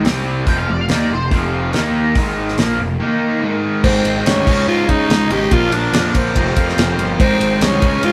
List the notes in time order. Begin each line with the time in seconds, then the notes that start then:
0.04 C2 C3 G3 C4, snare, open hi-hat
0.46 F1 F2 C3 F3 G5, kick, open hi-hat
0.58 F5
0.68 F1 F2 C3 D5
0.81 F5
0.89 D#2 D#3 A#3 D#4 D5, snare, open hi-hat
1.10 F1 F2 C3 C5
1.31 F1 F2 C3 F3, kick, open hi-hat
1.73 D#2 D#3 A#3 D#4, snare, open hi-hat
2.15 G#1 G#2 D#3 G#3, kick, open hi-hat
2.48 snare
2.58 A#1 A#2 F3 A#3, snare, open hi-hat
2.79 F1 F2 C3
3.00 D#3 A#3 D#4
3.41 G#2 D#3 G#3
3.83 G#1 G#2 D#3 G#3 C4 D#4 G#4 C5, kick, crash
4.05 G#1, ride
4.26 D2 C#4 C#5, snare, ride
4.46 C#2 C#3 G#3 C#4 D#4 G#4, kick, crash
4.67 G#2 F4 F5
4.89 C#3 D#4 D#5, kick, ride
5.10 C#2, snare, ride
5.30 G#1 C#3 G#3 C#4 D#4 G4 G#4 G5, ride
5.51 A#1 A#2 D3 F3 A#3 D4 F4 A#4 F5, kick, ride
5.71 A#1 D4, ride
5.75 D5
5.92 F2, snare, ride
6.15 A#1 C4 C5, kick, ride
6.34 F1 F2 C3 F3 A#3 C4 F4 A#4, kick, ride
6.39 F3
6.56 F2, kick, ride
6.69 snare
6.77 F1, snare, ride
6.98 G1, ride
7.19 G#1 G#2 D#3 G#3 C4 D#4 G#4 C5, kick, ride
7.40 G#1, ride
7.61 C2 C#4 C#5, snare, ride
7.81 C#2 C#3 G#3 C#4 D#4 G#4, kick, ride
8.03 G#2 F4 F5, ride